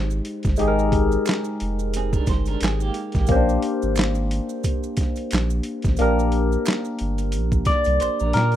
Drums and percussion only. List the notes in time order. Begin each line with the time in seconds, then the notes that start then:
0.10 maracas
0.25 closed hi-hat
0.43 kick, closed hi-hat, maracas
0.47 snare
0.56 closed hi-hat, maracas
0.79 maracas
0.92 kick, closed hi-hat
1.12 maracas
1.26 finger snap, snare, clap, closed hi-hat, maracas
1.44 maracas
1.60 closed hi-hat
1.79 maracas
1.94 closed hi-hat, maracas
2.13 kick, maracas
2.27 kick, closed hi-hat, maracas
2.31 snare
2.46 closed hi-hat, maracas
2.61 finger snap, snare, clap, closed hi-hat, maracas
2.80 maracas
2.94 closed hi-hat
3.12 kick, closed hi-hat, maracas
3.17 snare
3.27 kick, closed hi-hat, maracas
3.49 maracas
3.62 closed hi-hat
3.82 maracas
3.96 finger snap, snare, clap, closed hi-hat, maracas
4.15 maracas
4.31 closed hi-hat
4.49 maracas
4.64 kick, closed hi-hat, maracas
4.83 maracas
4.97 kick, closed hi-hat, maracas
5.01 snare
5.16 closed hi-hat, maracas
5.31 finger snap, snare, clap, closed hi-hat, maracas
5.50 maracas
5.63 closed hi-hat
5.82 kick, closed hi-hat, maracas
5.87 snare
5.97 closed hi-hat, maracas
6.19 maracas
6.32 closed hi-hat
6.52 maracas
6.66 finger snap, snare, clap, closed hi-hat, maracas
6.85 maracas
6.99 closed hi-hat
7.18 closed hi-hat, maracas
7.32 closed hi-hat, maracas
7.52 kick, maracas
7.65 kick, closed hi-hat, maracas
7.70 snare
7.85 closed hi-hat, maracas
8.00 finger snap, closed hi-hat, maracas
8.20 maracas
8.33 snare, closed hi-hat
8.52 closed hi-hat